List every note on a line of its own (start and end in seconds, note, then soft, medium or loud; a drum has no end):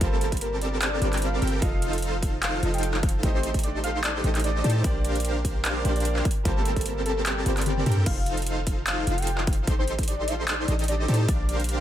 0.00 1.00 G1 loud
0.00 0.98 G3 medium
0.00 1.00 A#3 medium
0.00 1.00 C4 medium
0.00 0.99 F4 medium
0.00 1.00 G4 medium
0.00 1.00 A4 medium
0.00 1.00 A#4 medium
0.00 1.01 C5 loud
0.00 1.00 A5 loud
0.00 1.00 A5 medium
0.00 kick loud
0.00 closed hi-hat medium
0.12 0.32 A4 loud
0.21 closed hi-hat medium
0.32 kick medium
0.32 closed hi-hat soft
0.37 closed hi-hat medium
0.41 0.56 A#4 medium
0.41 closed hi-hat medium
0.61 0.76 D5 medium
0.61 closed hi-hat medium
0.82 1.24 D5 loud
0.82 clap loud
0.82 closed hi-hat medium
1.00 1.40 G1 loud
1.00 1.59 G3 medium
1.00 1.61 A#3 medium
1.00 1.40 C4 medium
1.00 1.60 F4 medium
1.00 1.40 G4 medium
1.00 1.40 A4 medium
1.00 1.40 A#4 medium
1.00 1.61 C5 medium
1.00 1.40 D5 medium
1.00 1.60 A5 medium
1.00 closed hi-hat medium
1.13 clap soft
1.13 closed hi-hat soft
1.18 closed hi-hat medium
1.22 1.49 F5 loud
1.22 closed hi-hat medium
1.42 1.60 G1 loud
1.42 1.60 C4 medium
1.42 1.60 G4 medium
1.42 1.60 A4 medium
1.42 1.60 A#4 medium
1.42 1.60 G5 medium
1.42 closed hi-hat medium
1.47 closed hi-hat medium
1.60 2.61 F1 loud
1.60 2.60 F3 medium
1.60 2.60 F4 medium
1.60 2.61 A4 medium
1.60 2.61 C5 medium
1.60 2.62 D#5 loud
1.60 1.90 F5 loud
1.60 kick loud
1.60 closed hi-hat medium
1.82 closed hi-hat medium
1.93 closed hi-hat soft
1.98 closed hi-hat medium
2.02 closed hi-hat medium
2.23 kick medium
2.23 closed hi-hat medium
2.43 2.63 F5 loud
2.43 clap loud
2.43 closed hi-hat medium
2.61 3.25 F1 loud
2.61 3.20 F3 medium
2.61 3.21 D#4 medium
2.61 3.21 F4 medium
2.61 3.21 A4 medium
2.61 3.22 A4 medium
2.61 3.21 C5 medium
2.61 3.22 D#5 loud
2.61 3.21 F5 medium
2.61 closed hi-hat medium
2.74 2.94 G5 loud
2.74 closed hi-hat soft
2.78 closed hi-hat medium
2.83 closed hi-hat medium
2.94 clap soft
3.03 kick loud
3.03 closed hi-hat soft
3.09 closed hi-hat medium
3.21 4.22 A1 loud
3.21 4.21 A3 medium
3.21 4.22 D#4 medium
3.21 4.21 G4 medium
3.21 4.22 G4 medium
3.21 4.22 A4 medium
3.21 4.22 C5 medium
3.21 4.22 C6 loud
3.21 kick loud
3.21 closed hi-hat medium
3.25 4.23 D#5 loud
3.35 3.54 C5 loud
3.43 closed hi-hat medium
3.54 kick medium
3.54 closed hi-hat soft
3.59 closed hi-hat medium
3.64 3.78 D5 medium
3.64 closed hi-hat medium
3.84 3.98 F5 medium
3.84 closed hi-hat medium
4.04 4.31 D5 loud
4.04 clap loud
4.04 closed hi-hat medium
4.22 4.62 A1 loud
4.22 4.81 A3 medium
4.22 4.62 D#4 medium
4.22 4.82 G4 medium
4.22 4.62 G4 medium
4.22 4.62 A4 medium
4.22 4.62 C5 medium
4.22 4.83 C5 medium
4.22 4.62 D#5 medium
4.22 4.83 D#5 medium
4.22 closed hi-hat medium
4.35 clap soft
4.35 closed hi-hat soft
4.40 closed hi-hat medium
4.44 4.71 D5 loud
4.44 closed hi-hat medium
4.64 4.83 A2 loud
4.64 4.82 D#4 medium
4.64 4.82 G4 medium
4.64 4.82 A4 medium
4.64 4.82 C5 medium
4.64 4.82 A5 medium
4.64 closed hi-hat soft
4.70 closed hi-hat medium
4.82 5.83 A#1 medium
4.82 5.82 A#3 medium
4.82 5.83 D4 medium
4.82 5.83 G4 medium
4.82 5.83 C5 medium
4.82 5.12 D5 loud
4.82 5.84 D5 loud
4.82 kick loud
4.82 closed hi-hat medium
5.05 closed hi-hat medium
5.16 closed hi-hat soft
5.20 closed hi-hat medium
5.25 closed hi-hat medium
5.45 kick medium
5.45 closed hi-hat medium
5.65 5.85 D5 loud
5.65 clap loud
5.65 closed hi-hat medium
5.84 6.22 A#1 loud
5.84 6.24 A#3 medium
5.84 6.24 D4 medium
5.84 6.24 G4 medium
5.84 6.24 A#4 medium
5.84 6.24 C5 medium
5.84 6.25 D5 loud
5.84 6.24 F5 medium
5.84 closed hi-hat medium
5.96 6.16 D5 loud
5.96 closed hi-hat soft
6.00 closed hi-hat medium
6.05 closed hi-hat medium
6.16 clap soft
6.25 kick loud
6.25 closed hi-hat soft
6.31 closed hi-hat medium
6.44 7.44 G1 loud
6.44 7.43 G3 medium
6.44 7.44 A#3 medium
6.44 7.44 C4 medium
6.44 7.44 F4 medium
6.44 7.44 G4 medium
6.44 7.44 A4 medium
6.44 7.44 A#4 medium
6.44 7.44 A5 loud
6.44 7.44 A5 medium
6.44 kick loud
6.44 closed hi-hat medium
6.48 7.45 C5 loud
6.56 6.87 A4 loud
6.65 closed hi-hat medium
6.76 kick medium
6.76 closed hi-hat soft
6.81 closed hi-hat medium
6.86 7.00 A#4 medium
6.86 closed hi-hat medium
7.06 7.20 A4 medium
7.06 closed hi-hat medium
7.26 7.53 G4 loud
7.26 clap loud
7.26 closed hi-hat medium
7.44 7.85 G1 loud
7.44 8.03 G3 medium
7.44 8.05 A#3 medium
7.44 7.84 C4 medium
7.44 8.04 F4 medium
7.44 7.84 G4 medium
7.44 7.84 A4 medium
7.44 7.84 A#4 medium
7.44 8.05 C5 medium
7.44 7.84 D5 medium
7.44 8.04 A5 medium
7.44 closed hi-hat medium
7.57 clap soft
7.57 closed hi-hat medium
7.62 closed hi-hat medium
7.66 7.94 G4 loud
7.66 closed hi-hat medium
7.66 high tom medium
7.77 high tom medium
7.86 8.05 G2 loud
7.86 8.04 C4 medium
7.86 8.04 G4 medium
7.86 8.04 A4 medium
7.86 8.04 A#4 medium
7.86 8.04 G5 medium
7.86 closed hi-hat medium
7.86 mid tom medium
7.92 closed hi-hat medium
7.97 mid tom medium
8.06 9.05 F1 loud
8.06 9.05 F4 medium
8.06 9.05 F5 loud
8.06 8.34 F5 loud
8.06 kick loud
8.06 closed hi-hat medium
8.06 crash loud
8.26 closed hi-hat medium
8.37 closed hi-hat medium
8.42 closed hi-hat medium
8.47 closed hi-hat medium
8.67 kick medium
8.67 closed hi-hat medium
8.87 9.20 F5 loud
8.87 clap loud
8.87 closed hi-hat medium
9.07 9.69 F1 loud
9.07 9.65 D#4 medium
9.07 9.65 F4 medium
9.07 9.65 A4 medium
9.07 9.65 C5 medium
9.07 9.65 F5 medium
9.07 closed hi-hat medium
9.18 9.38 G5 loud
9.18 closed hi-hat soft
9.22 closed hi-hat medium
9.27 closed hi-hat medium
9.38 clap soft
9.47 kick loud
9.47 closed hi-hat medium
9.53 closed hi-hat medium
9.67 10.66 A1 loud
9.67 10.66 D#4 medium
9.67 10.66 G4 medium
9.67 10.66 A4 medium
9.67 10.66 C5 medium
9.67 10.66 C6 loud
9.67 kick loud
9.67 closed hi-hat medium
9.79 9.99 C5 loud
9.88 closed hi-hat medium
9.99 kick medium
9.99 closed hi-hat medium
10.03 closed hi-hat medium
10.08 10.29 D5 medium
10.08 closed hi-hat medium
10.28 10.42 F5 medium
10.28 closed hi-hat medium
10.48 10.75 D5 loud
10.48 clap loud
10.48 closed hi-hat medium
10.68 11.07 A1 loud
10.68 11.06 D#4 medium
10.68 11.06 G4 medium
10.68 11.06 A4 medium
10.68 11.06 C5 medium
10.68 11.06 D#5 medium
10.68 closed hi-hat medium
10.79 closed hi-hat medium
10.84 closed hi-hat medium
10.88 11.16 D5 loud
10.88 closed hi-hat medium
11.08 11.27 A2 loud
11.08 11.26 D#4 medium
11.08 11.26 G4 medium
11.08 11.26 A4 medium
11.08 11.26 C5 medium
11.08 11.26 A5 medium
11.08 closed hi-hat medium
11.14 closed hi-hat medium
11.28 11.80 A#1 loud
11.28 11.80 D4 medium
11.28 11.80 G4 medium
11.28 11.80 A#4 medium
11.28 11.80 C5 medium
11.28 11.56 D5 loud
11.28 11.80 F5 loud
11.28 kick loud
11.28 closed hi-hat medium
11.49 closed hi-hat medium
11.60 closed hi-hat medium
11.64 closed hi-hat medium
11.69 closed hi-hat medium